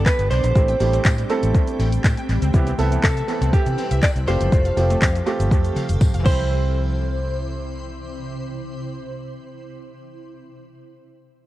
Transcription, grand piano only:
0.55 0.70 A3 medium
0.55 0.70 C4 medium
0.55 0.71 E4 medium
0.55 0.71 G4 medium
0.80 1.09 A3 medium
0.80 1.09 C4 medium
0.80 1.09 E4 medium
0.80 1.10 G4 medium
1.30 1.88 A3 loud
1.30 1.88 C4 medium
1.30 1.88 E4 medium
1.30 1.88 A4 loud
2.53 2.69 B3 medium
2.53 2.69 C4 medium
2.53 2.69 E4 medium
2.53 2.69 G4 loud
2.78 3.08 B3 medium
2.78 3.08 C4 medium
2.78 3.08 E4 medium
2.78 3.08 A4 loud
3.28 3.86 B3 medium
3.28 3.86 C4 medium
3.28 3.86 E4 medium
3.28 3.86 A4 medium
4.27 4.68 A3 medium
4.27 4.68 C4 medium
4.27 4.68 F4 medium
4.27 4.68 G4 medium
4.77 5.06 A3 medium
4.77 5.06 C4 medium
4.77 5.06 F4 medium
4.77 5.06 G4 medium
5.26 5.85 A3 medium
5.26 5.85 C4 medium
5.26 5.85 F4 medium
5.26 5.85 G4 loud
6.23 9.47 C4 medium
6.23 9.49 E4 medium
6.28 9.51 C5 medium

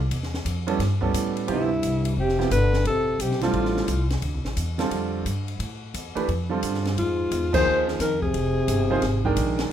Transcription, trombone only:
1.50 2.14 G2 medium
2.17 2.49 C3 medium
2.52 2.84 D3 medium
2.86 3.20 C3 medium
3.20 3.42 C3 medium
3.43 4.07 A2 medium
6.97 7.49 G#2 medium
7.54 7.85 D#3 medium
7.99 8.20 D#3 medium
8.21 9.54 C3 medium

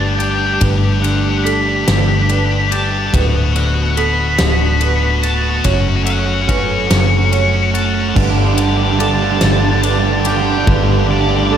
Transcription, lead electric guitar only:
0.00 0.18 A5 medium
0.18 0.58 G5 medium
1.02 1.46 F#5 medium
1.44 2.74 B5 medium
2.72 3.11 A5 medium
3.57 3.99 F#5 medium
3.97 5.19 B5 medium
5.23 5.62 A5 medium
6.06 6.49 F#5 medium
6.48 7.70 C#6 medium
7.74 8.13 A5 medium
8.57 8.96 D5 medium
8.99 10.27 A5 loud
10.27 10.65 G5 medium
11.11 11.53 D5 medium
11.53 11.57 A5 loud

